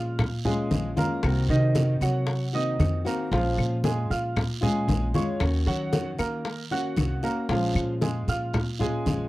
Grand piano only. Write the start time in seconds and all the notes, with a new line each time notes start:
Already playing: F4 F5 F6
0.45 G#3 G#4 G#5
0.98 A#3 A#4 A#5
1.50 D#3 D#4 D#5
2.02 F#3 F#4 F#5
2.54 D#4 D#5 D#6
3.06 A#3 A#4 A#5
3.32 F3 F4 F5
3.84 G#3 G#4 G#5
4.10 F4 F5 F6
4.63 G#3 G#4 G#5
5.14 C#4 C#5 C#6
5.67 F#3 F#4 F#5
6.19 A#3 A#4 A#5
6.71 F#4 F#5 F#6
7.24 A#3 A#4 A#5
7.50 F3 F4 F5
8.02 G#3 G#4 G#5
8.29 F4 F5 F6
8.81 G#3 G#4 G#5